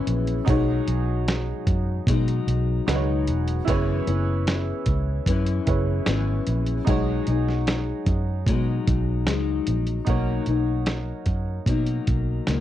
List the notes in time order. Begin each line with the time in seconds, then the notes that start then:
Already playing: F#2 E3 B3 C#4 E4 G#4 B4 C#5
0.07 A#1, closed hi-hat
0.27 closed hi-hat
0.45 B1 B2 F#3 G#3 D#4 F#4 G#4, kick, closed hi-hat
0.49 D#4 C#5
0.88 B1, closed hi-hat
1.28 snare, closed hi-hat
1.67 F#2, kick, closed hi-hat
2.07 B2 F#3 G#3 D#4, kick, closed hi-hat
2.28 closed hi-hat
2.47 B1, closed hi-hat
2.87 C#2 B2 F#3 G#3 D#4 F#4 G#4 B4, snare, closed hi-hat
2.96 C#5
3.27 E1, closed hi-hat
3.48 closed hi-hat
3.65 F#1 F#2 E3 E4 G#4 B4, kick, closed hi-hat
3.69 B3 C#4 C#5
4.07 F#1 E3 B3 C#4, closed hi-hat
4.47 snare, closed hi-hat
4.86 C#2, kick, closed hi-hat
5.26 F#2 E3 B3 C#4, kick, closed hi-hat
5.46 closed hi-hat
5.66 F#1 E4 G#4 B4 C#5, kick, closed hi-hat
6.06 G#1 F#2 E3 B3 C#4, snare, closed hi-hat
6.47 A#1, closed hi-hat
6.66 closed hi-hat
6.85 B1 B2 F#3 G#3 D#4 F#4 G#4, kick, closed hi-hat
6.90 C#5
7.27 B1 F#3 G#3 D#4, closed hi-hat
7.48 snare
7.67 snare, closed hi-hat
8.06 F#2, kick, closed hi-hat
8.46 B2 F#3 G#3 D#4, kick, closed hi-hat
8.88 B1, kick, closed hi-hat
9.27 C#2 F#3 G#3 D#4, snare, closed hi-hat
9.67 A#1, closed hi-hat
9.87 closed hi-hat
10.05 B1 B2 F#3 A#3 D#4 F#4 A#4, kick, closed hi-hat
10.10 C#5
10.46 B1 F#3 A#3 D#4, closed hi-hat
10.86 snare, closed hi-hat
11.26 F#2, kick, closed hi-hat
11.66 B2 F#3 A#3 D#4, kick, closed hi-hat
11.86 closed hi-hat
12.07 B1, kick, closed hi-hat
12.47 C#2 B2 F#3 A#3 D#4, snare, closed hi-hat